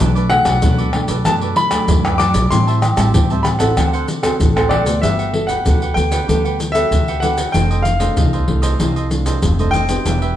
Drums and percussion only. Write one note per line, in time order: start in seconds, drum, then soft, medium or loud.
0.00 pandeiro medium
0.00 maracas medium
0.00 surdo medium
0.16 pandeiro soft
0.16 maracas soft
0.30 pandeiro medium
0.30 tamborim medium
0.45 pandeiro medium
0.45 tamborim medium
0.45 maracas medium
0.45 surdo soft
0.62 pandeiro medium
0.62 maracas medium
0.62 surdo loud
0.79 pandeiro soft
0.79 maracas soft
0.93 pandeiro medium
0.93 tamborim medium
0.93 surdo soft
1.08 pandeiro medium
1.08 maracas medium
1.08 surdo soft
1.25 pandeiro medium
1.25 tamborim medium
1.25 maracas medium
1.25 surdo medium
1.41 pandeiro soft
1.41 maracas soft
1.56 pandeiro medium
1.71 pandeiro medium
1.71 tamborim medium
1.71 maracas medium
1.71 surdo soft
1.88 pandeiro medium
1.88 maracas medium
1.88 surdo loud
2.05 pandeiro soft
2.05 tamborim medium
2.05 maracas soft
2.19 pandeiro medium
2.19 tamborim medium
2.19 maracas medium
2.34 pandeiro medium
2.34 maracas medium
2.34 surdo soft
2.52 pandeiro medium
2.52 maracas medium
2.52 surdo medium
2.68 pandeiro soft
2.68 maracas soft
2.82 pandeiro medium
2.82 tamborim medium
2.82 maracas medium
2.97 pandeiro medium
2.97 tamborim medium
2.97 maracas medium
2.97 surdo soft
3.14 pandeiro medium
3.14 maracas medium
3.14 surdo loud
3.30 pandeiro soft
3.30 maracas soft
3.45 pandeiro medium
3.45 tamborim medium
3.45 maracas medium
3.45 surdo soft
3.60 pandeiro medium
3.60 maracas medium
3.60 surdo soft
3.77 pandeiro medium
3.77 tamborim medium
3.77 maracas medium
3.77 surdo medium
3.94 pandeiro soft
3.94 maracas soft
4.08 pandeiro medium
4.08 maracas medium
4.23 pandeiro medium
4.23 tamborim medium
4.23 maracas medium
4.23 surdo soft
4.40 pandeiro medium
4.40 maracas medium
4.40 surdo loud
4.57 pandeiro soft
4.57 tamborim medium
4.57 maracas soft
4.71 pandeiro medium
4.71 tamborim medium
4.86 pandeiro medium
4.86 maracas medium
4.86 surdo soft
5.03 pandeiro medium
5.03 maracas medium
5.03 surdo medium
5.19 pandeiro soft
5.19 maracas soft
5.34 pandeiro medium
5.49 pandeiro medium
5.49 maracas medium
5.49 surdo soft
5.66 pandeiro medium
5.66 maracas medium
5.66 surdo loud
5.82 pandeiro soft
5.82 maracas soft
5.97 pandeiro medium
5.97 maracas medium
6.12 pandeiro medium
6.12 maracas medium
6.12 surdo soft
6.29 pandeiro medium
6.29 maracas medium
6.29 surdo medium
6.45 pandeiro soft
6.45 maracas soft
6.60 pandeiro medium
6.60 maracas medium
6.75 pandeiro medium
6.75 maracas medium
6.75 surdo soft
6.92 pandeiro medium
6.92 maracas medium
6.92 surdo loud
7.08 pandeiro soft
7.08 maracas soft
7.22 pandeiro medium
7.22 maracas medium
7.38 pandeiro medium
7.38 maracas medium
7.38 surdo soft
7.54 pandeiro medium
7.54 maracas medium
7.54 surdo medium
7.71 pandeiro soft
7.71 maracas soft
7.85 pandeiro medium
7.85 maracas medium
8.00 pandeiro medium
8.00 maracas medium
8.00 surdo soft
8.17 pandeiro medium
8.17 maracas medium
8.17 surdo loud
8.33 pandeiro soft
8.33 maracas soft
8.48 pandeiro medium
8.48 surdo soft
8.63 pandeiro medium
8.63 maracas medium
8.63 surdo soft
8.80 pandeiro medium
8.80 maracas medium
8.80 surdo soft
8.96 pandeiro soft
8.96 maracas soft
9.11 pandeiro medium
9.11 maracas medium
9.26 pandeiro medium
9.26 maracas medium
9.26 surdo soft
9.42 pandeiro medium
9.42 maracas medium
9.42 surdo medium
9.59 pandeiro soft
9.59 maracas soft
9.73 pandeiro medium
9.73 maracas medium
9.89 pandeiro medium
9.89 maracas medium
9.89 surdo soft
10.06 pandeiro medium
10.06 maracas medium
10.06 surdo medium
10.22 pandeiro soft
10.22 maracas soft